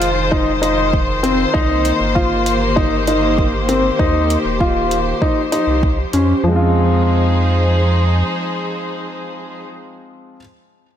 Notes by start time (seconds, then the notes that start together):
Already playing: F1 D#3 G#3 F4 C5
0.02 closed hi-hat
0.32 D#4, kick
0.62 D#4, closed hi-hat
0.93 kick
1.23 C4, closed hi-hat
1.54 C2 D#4, kick
1.67 A#3
1.85 closed hi-hat
2.00 G1
2.12 F4 G4, kick
2.46 closed hi-hat
2.76 D#4, kick
3.07 D#4, closed hi-hat
3.38 kick
3.69 C4, closed hi-hat
3.99 D#2 D#4, kick
4.30 closed hi-hat
4.45 D#1
4.60 F4, kick
4.91 closed hi-hat
5.21 F3 D#4, kick
5.52 D#4, closed hi-hat
5.67 C2
5.83 kick
6.13 F2 C#4, closed hi-hat
6.43 F2 F3
6.48 G#3 C4
6.53 D#4 F4
6.63 G#4
6.72 C5